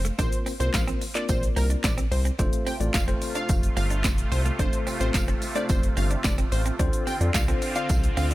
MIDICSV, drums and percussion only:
0, 0, Header, 1, 2, 480
1, 0, Start_track
1, 0, Key_signature, -1, "major"
1, 0, Tempo, 550459
1, 165, Time_signature, 4, 2, 24, 8
1, 7274, End_track
2, 0, Start_track
2, 0, Title_t, "Drums"
2, 43, Note_on_c, 9, 42, 51
2, 43, Note_on_c, 9, 82, 74
2, 131, Note_off_c, 9, 42, 0
2, 131, Note_off_c, 9, 82, 0
2, 164, Note_on_c, 9, 36, 106
2, 164, Note_on_c, 9, 42, 78
2, 164, Note_on_c, 9, 82, 72
2, 165, Note_on_c, 9, 54, 36
2, 251, Note_off_c, 9, 36, 0
2, 251, Note_off_c, 9, 42, 0
2, 251, Note_off_c, 9, 82, 0
2, 252, Note_off_c, 9, 54, 0
2, 283, Note_on_c, 9, 42, 66
2, 283, Note_on_c, 9, 82, 68
2, 371, Note_off_c, 9, 42, 0
2, 371, Note_off_c, 9, 82, 0
2, 404, Note_on_c, 9, 46, 65
2, 404, Note_on_c, 9, 82, 48
2, 407, Note_on_c, 9, 54, 51
2, 491, Note_off_c, 9, 46, 0
2, 491, Note_off_c, 9, 82, 0
2, 494, Note_off_c, 9, 54, 0
2, 526, Note_on_c, 9, 42, 59
2, 526, Note_on_c, 9, 82, 84
2, 614, Note_off_c, 9, 42, 0
2, 614, Note_off_c, 9, 82, 0
2, 642, Note_on_c, 9, 38, 90
2, 644, Note_on_c, 9, 39, 114
2, 644, Note_on_c, 9, 42, 73
2, 644, Note_on_c, 9, 82, 73
2, 645, Note_on_c, 9, 54, 80
2, 646, Note_on_c, 9, 36, 108
2, 730, Note_off_c, 9, 38, 0
2, 731, Note_off_c, 9, 39, 0
2, 731, Note_off_c, 9, 42, 0
2, 731, Note_off_c, 9, 82, 0
2, 732, Note_off_c, 9, 54, 0
2, 733, Note_off_c, 9, 36, 0
2, 766, Note_on_c, 9, 42, 46
2, 766, Note_on_c, 9, 82, 48
2, 853, Note_off_c, 9, 42, 0
2, 853, Note_off_c, 9, 82, 0
2, 885, Note_on_c, 9, 46, 73
2, 885, Note_on_c, 9, 82, 51
2, 886, Note_on_c, 9, 54, 43
2, 973, Note_off_c, 9, 46, 0
2, 973, Note_off_c, 9, 54, 0
2, 973, Note_off_c, 9, 82, 0
2, 1003, Note_on_c, 9, 42, 51
2, 1003, Note_on_c, 9, 82, 76
2, 1007, Note_on_c, 9, 39, 73
2, 1090, Note_off_c, 9, 42, 0
2, 1090, Note_off_c, 9, 82, 0
2, 1094, Note_off_c, 9, 39, 0
2, 1122, Note_on_c, 9, 42, 79
2, 1122, Note_on_c, 9, 82, 77
2, 1126, Note_on_c, 9, 36, 114
2, 1126, Note_on_c, 9, 54, 57
2, 1209, Note_off_c, 9, 42, 0
2, 1209, Note_off_c, 9, 82, 0
2, 1213, Note_off_c, 9, 36, 0
2, 1213, Note_off_c, 9, 54, 0
2, 1247, Note_on_c, 9, 42, 54
2, 1247, Note_on_c, 9, 82, 57
2, 1335, Note_off_c, 9, 42, 0
2, 1335, Note_off_c, 9, 82, 0
2, 1365, Note_on_c, 9, 46, 68
2, 1365, Note_on_c, 9, 82, 49
2, 1366, Note_on_c, 9, 54, 52
2, 1453, Note_off_c, 9, 46, 0
2, 1453, Note_off_c, 9, 54, 0
2, 1453, Note_off_c, 9, 82, 0
2, 1484, Note_on_c, 9, 42, 54
2, 1484, Note_on_c, 9, 82, 76
2, 1571, Note_off_c, 9, 42, 0
2, 1571, Note_off_c, 9, 82, 0
2, 1603, Note_on_c, 9, 38, 107
2, 1604, Note_on_c, 9, 42, 85
2, 1604, Note_on_c, 9, 82, 83
2, 1605, Note_on_c, 9, 36, 119
2, 1605, Note_on_c, 9, 39, 127
2, 1607, Note_on_c, 9, 54, 87
2, 1690, Note_off_c, 9, 38, 0
2, 1691, Note_off_c, 9, 42, 0
2, 1691, Note_off_c, 9, 82, 0
2, 1692, Note_off_c, 9, 36, 0
2, 1692, Note_off_c, 9, 39, 0
2, 1694, Note_off_c, 9, 54, 0
2, 1725, Note_on_c, 9, 42, 58
2, 1725, Note_on_c, 9, 82, 60
2, 1812, Note_off_c, 9, 42, 0
2, 1812, Note_off_c, 9, 82, 0
2, 1847, Note_on_c, 9, 46, 78
2, 1847, Note_on_c, 9, 82, 58
2, 1935, Note_off_c, 9, 46, 0
2, 1935, Note_off_c, 9, 82, 0
2, 1964, Note_on_c, 9, 42, 53
2, 1964, Note_on_c, 9, 82, 74
2, 2052, Note_off_c, 9, 42, 0
2, 2052, Note_off_c, 9, 82, 0
2, 2084, Note_on_c, 9, 36, 108
2, 2085, Note_on_c, 9, 42, 75
2, 2085, Note_on_c, 9, 54, 36
2, 2085, Note_on_c, 9, 82, 70
2, 2171, Note_off_c, 9, 36, 0
2, 2172, Note_off_c, 9, 42, 0
2, 2172, Note_off_c, 9, 54, 0
2, 2172, Note_off_c, 9, 82, 0
2, 2205, Note_on_c, 9, 42, 66
2, 2205, Note_on_c, 9, 82, 67
2, 2292, Note_off_c, 9, 42, 0
2, 2292, Note_off_c, 9, 82, 0
2, 2325, Note_on_c, 9, 46, 65
2, 2325, Note_on_c, 9, 82, 44
2, 2326, Note_on_c, 9, 54, 54
2, 2413, Note_off_c, 9, 46, 0
2, 2413, Note_off_c, 9, 54, 0
2, 2413, Note_off_c, 9, 82, 0
2, 2447, Note_on_c, 9, 42, 59
2, 2447, Note_on_c, 9, 82, 86
2, 2534, Note_off_c, 9, 42, 0
2, 2534, Note_off_c, 9, 82, 0
2, 2563, Note_on_c, 9, 38, 89
2, 2565, Note_on_c, 9, 39, 110
2, 2565, Note_on_c, 9, 42, 72
2, 2565, Note_on_c, 9, 54, 86
2, 2565, Note_on_c, 9, 82, 74
2, 2566, Note_on_c, 9, 36, 106
2, 2651, Note_off_c, 9, 38, 0
2, 2652, Note_off_c, 9, 39, 0
2, 2652, Note_off_c, 9, 42, 0
2, 2652, Note_off_c, 9, 54, 0
2, 2652, Note_off_c, 9, 82, 0
2, 2653, Note_off_c, 9, 36, 0
2, 2686, Note_on_c, 9, 42, 46
2, 2686, Note_on_c, 9, 82, 45
2, 2773, Note_off_c, 9, 42, 0
2, 2773, Note_off_c, 9, 82, 0
2, 2805, Note_on_c, 9, 46, 73
2, 2805, Note_on_c, 9, 54, 44
2, 2805, Note_on_c, 9, 82, 50
2, 2892, Note_off_c, 9, 46, 0
2, 2892, Note_off_c, 9, 82, 0
2, 2893, Note_off_c, 9, 54, 0
2, 2923, Note_on_c, 9, 42, 50
2, 2923, Note_on_c, 9, 82, 73
2, 3010, Note_off_c, 9, 42, 0
2, 3010, Note_off_c, 9, 82, 0
2, 3043, Note_on_c, 9, 42, 78
2, 3043, Note_on_c, 9, 82, 82
2, 3046, Note_on_c, 9, 36, 114
2, 3046, Note_on_c, 9, 54, 56
2, 3130, Note_off_c, 9, 42, 0
2, 3130, Note_off_c, 9, 82, 0
2, 3133, Note_off_c, 9, 54, 0
2, 3134, Note_off_c, 9, 36, 0
2, 3168, Note_on_c, 9, 42, 55
2, 3168, Note_on_c, 9, 82, 55
2, 3255, Note_off_c, 9, 42, 0
2, 3255, Note_off_c, 9, 82, 0
2, 3286, Note_on_c, 9, 46, 71
2, 3286, Note_on_c, 9, 54, 51
2, 3286, Note_on_c, 9, 82, 51
2, 3373, Note_off_c, 9, 46, 0
2, 3373, Note_off_c, 9, 82, 0
2, 3374, Note_off_c, 9, 54, 0
2, 3405, Note_on_c, 9, 42, 53
2, 3405, Note_on_c, 9, 82, 74
2, 3492, Note_off_c, 9, 42, 0
2, 3492, Note_off_c, 9, 82, 0
2, 3524, Note_on_c, 9, 38, 105
2, 3525, Note_on_c, 9, 36, 116
2, 3525, Note_on_c, 9, 39, 127
2, 3525, Note_on_c, 9, 42, 81
2, 3525, Note_on_c, 9, 82, 83
2, 3526, Note_on_c, 9, 54, 88
2, 3611, Note_off_c, 9, 38, 0
2, 3612, Note_off_c, 9, 36, 0
2, 3612, Note_off_c, 9, 39, 0
2, 3612, Note_off_c, 9, 42, 0
2, 3612, Note_off_c, 9, 82, 0
2, 3614, Note_off_c, 9, 54, 0
2, 3646, Note_on_c, 9, 42, 59
2, 3646, Note_on_c, 9, 82, 58
2, 3733, Note_off_c, 9, 42, 0
2, 3733, Note_off_c, 9, 82, 0
2, 3763, Note_on_c, 9, 54, 30
2, 3768, Note_on_c, 9, 46, 78
2, 3768, Note_on_c, 9, 82, 58
2, 3850, Note_off_c, 9, 54, 0
2, 3855, Note_off_c, 9, 46, 0
2, 3855, Note_off_c, 9, 82, 0
2, 3885, Note_on_c, 9, 42, 51
2, 3885, Note_on_c, 9, 82, 74
2, 3972, Note_off_c, 9, 42, 0
2, 3972, Note_off_c, 9, 82, 0
2, 4004, Note_on_c, 9, 36, 103
2, 4005, Note_on_c, 9, 42, 74
2, 4005, Note_on_c, 9, 82, 76
2, 4092, Note_off_c, 9, 36, 0
2, 4092, Note_off_c, 9, 42, 0
2, 4092, Note_off_c, 9, 82, 0
2, 4124, Note_on_c, 9, 42, 70
2, 4124, Note_on_c, 9, 82, 69
2, 4212, Note_off_c, 9, 42, 0
2, 4212, Note_off_c, 9, 82, 0
2, 4245, Note_on_c, 9, 46, 64
2, 4245, Note_on_c, 9, 82, 46
2, 4247, Note_on_c, 9, 54, 56
2, 4332, Note_off_c, 9, 46, 0
2, 4332, Note_off_c, 9, 82, 0
2, 4334, Note_off_c, 9, 54, 0
2, 4366, Note_on_c, 9, 42, 61
2, 4366, Note_on_c, 9, 82, 84
2, 4453, Note_off_c, 9, 42, 0
2, 4453, Note_off_c, 9, 82, 0
2, 4483, Note_on_c, 9, 38, 92
2, 4485, Note_on_c, 9, 39, 115
2, 4485, Note_on_c, 9, 42, 76
2, 4485, Note_on_c, 9, 54, 83
2, 4485, Note_on_c, 9, 82, 71
2, 4486, Note_on_c, 9, 36, 110
2, 4570, Note_off_c, 9, 38, 0
2, 4572, Note_off_c, 9, 39, 0
2, 4572, Note_off_c, 9, 42, 0
2, 4572, Note_off_c, 9, 54, 0
2, 4572, Note_off_c, 9, 82, 0
2, 4573, Note_off_c, 9, 36, 0
2, 4605, Note_on_c, 9, 42, 45
2, 4605, Note_on_c, 9, 82, 45
2, 4692, Note_off_c, 9, 42, 0
2, 4692, Note_off_c, 9, 82, 0
2, 4724, Note_on_c, 9, 46, 73
2, 4724, Note_on_c, 9, 82, 49
2, 4726, Note_on_c, 9, 54, 44
2, 4812, Note_off_c, 9, 46, 0
2, 4812, Note_off_c, 9, 82, 0
2, 4814, Note_off_c, 9, 54, 0
2, 4842, Note_on_c, 9, 42, 51
2, 4842, Note_on_c, 9, 82, 72
2, 4930, Note_off_c, 9, 42, 0
2, 4930, Note_off_c, 9, 82, 0
2, 4963, Note_on_c, 9, 42, 76
2, 4963, Note_on_c, 9, 82, 75
2, 4966, Note_on_c, 9, 36, 121
2, 4966, Note_on_c, 9, 54, 55
2, 5050, Note_off_c, 9, 42, 0
2, 5050, Note_off_c, 9, 82, 0
2, 5053, Note_off_c, 9, 36, 0
2, 5053, Note_off_c, 9, 54, 0
2, 5087, Note_on_c, 9, 42, 56
2, 5087, Note_on_c, 9, 82, 55
2, 5174, Note_off_c, 9, 42, 0
2, 5174, Note_off_c, 9, 82, 0
2, 5205, Note_on_c, 9, 46, 72
2, 5205, Note_on_c, 9, 82, 50
2, 5207, Note_on_c, 9, 54, 51
2, 5292, Note_off_c, 9, 46, 0
2, 5292, Note_off_c, 9, 82, 0
2, 5294, Note_off_c, 9, 54, 0
2, 5323, Note_on_c, 9, 42, 55
2, 5323, Note_on_c, 9, 82, 72
2, 5411, Note_off_c, 9, 42, 0
2, 5411, Note_off_c, 9, 82, 0
2, 5443, Note_on_c, 9, 38, 105
2, 5444, Note_on_c, 9, 39, 127
2, 5444, Note_on_c, 9, 42, 87
2, 5444, Note_on_c, 9, 82, 87
2, 5445, Note_on_c, 9, 36, 124
2, 5446, Note_on_c, 9, 54, 87
2, 5530, Note_off_c, 9, 38, 0
2, 5531, Note_off_c, 9, 39, 0
2, 5531, Note_off_c, 9, 42, 0
2, 5531, Note_off_c, 9, 82, 0
2, 5532, Note_off_c, 9, 36, 0
2, 5533, Note_off_c, 9, 54, 0
2, 5565, Note_on_c, 9, 42, 60
2, 5565, Note_on_c, 9, 82, 60
2, 5652, Note_off_c, 9, 42, 0
2, 5652, Note_off_c, 9, 82, 0
2, 5684, Note_on_c, 9, 54, 31
2, 5686, Note_on_c, 9, 46, 78
2, 5686, Note_on_c, 9, 82, 58
2, 5772, Note_off_c, 9, 54, 0
2, 5774, Note_off_c, 9, 46, 0
2, 5774, Note_off_c, 9, 82, 0
2, 5804, Note_on_c, 9, 42, 55
2, 5804, Note_on_c, 9, 82, 73
2, 5891, Note_off_c, 9, 42, 0
2, 5891, Note_off_c, 9, 82, 0
2, 5925, Note_on_c, 9, 36, 105
2, 5925, Note_on_c, 9, 42, 74
2, 5925, Note_on_c, 9, 82, 74
2, 6012, Note_off_c, 9, 36, 0
2, 6012, Note_off_c, 9, 42, 0
2, 6012, Note_off_c, 9, 82, 0
2, 6044, Note_on_c, 9, 42, 69
2, 6044, Note_on_c, 9, 82, 70
2, 6132, Note_off_c, 9, 42, 0
2, 6132, Note_off_c, 9, 82, 0
2, 6165, Note_on_c, 9, 46, 65
2, 6165, Note_on_c, 9, 82, 46
2, 6167, Note_on_c, 9, 54, 52
2, 6252, Note_off_c, 9, 46, 0
2, 6252, Note_off_c, 9, 82, 0
2, 6254, Note_off_c, 9, 54, 0
2, 6286, Note_on_c, 9, 42, 59
2, 6286, Note_on_c, 9, 82, 83
2, 6373, Note_off_c, 9, 42, 0
2, 6373, Note_off_c, 9, 82, 0
2, 6402, Note_on_c, 9, 38, 88
2, 6404, Note_on_c, 9, 39, 114
2, 6404, Note_on_c, 9, 42, 74
2, 6404, Note_on_c, 9, 82, 77
2, 6405, Note_on_c, 9, 54, 86
2, 6406, Note_on_c, 9, 36, 112
2, 6490, Note_off_c, 9, 38, 0
2, 6491, Note_off_c, 9, 39, 0
2, 6491, Note_off_c, 9, 42, 0
2, 6491, Note_off_c, 9, 82, 0
2, 6492, Note_off_c, 9, 54, 0
2, 6493, Note_off_c, 9, 36, 0
2, 6525, Note_on_c, 9, 42, 46
2, 6525, Note_on_c, 9, 82, 48
2, 6612, Note_off_c, 9, 42, 0
2, 6612, Note_off_c, 9, 82, 0
2, 6644, Note_on_c, 9, 46, 75
2, 6644, Note_on_c, 9, 82, 51
2, 6646, Note_on_c, 9, 54, 42
2, 6732, Note_off_c, 9, 46, 0
2, 6732, Note_off_c, 9, 82, 0
2, 6733, Note_off_c, 9, 54, 0
2, 6762, Note_on_c, 9, 42, 51
2, 6762, Note_on_c, 9, 82, 76
2, 6849, Note_off_c, 9, 42, 0
2, 6849, Note_off_c, 9, 82, 0
2, 6883, Note_on_c, 9, 42, 76
2, 6883, Note_on_c, 9, 82, 78
2, 6886, Note_on_c, 9, 36, 120
2, 6887, Note_on_c, 9, 54, 59
2, 6970, Note_off_c, 9, 42, 0
2, 6970, Note_off_c, 9, 82, 0
2, 6974, Note_off_c, 9, 36, 0
2, 6974, Note_off_c, 9, 54, 0
2, 7007, Note_on_c, 9, 42, 57
2, 7007, Note_on_c, 9, 82, 57
2, 7095, Note_off_c, 9, 42, 0
2, 7095, Note_off_c, 9, 82, 0
2, 7126, Note_on_c, 9, 46, 69
2, 7126, Note_on_c, 9, 82, 49
2, 7127, Note_on_c, 9, 54, 51
2, 7213, Note_off_c, 9, 46, 0
2, 7213, Note_off_c, 9, 82, 0
2, 7214, Note_off_c, 9, 54, 0
2, 7244, Note_on_c, 9, 42, 53
2, 7244, Note_on_c, 9, 82, 74
2, 7274, Note_off_c, 9, 42, 0
2, 7274, Note_off_c, 9, 82, 0
2, 7274, End_track
0, 0, End_of_file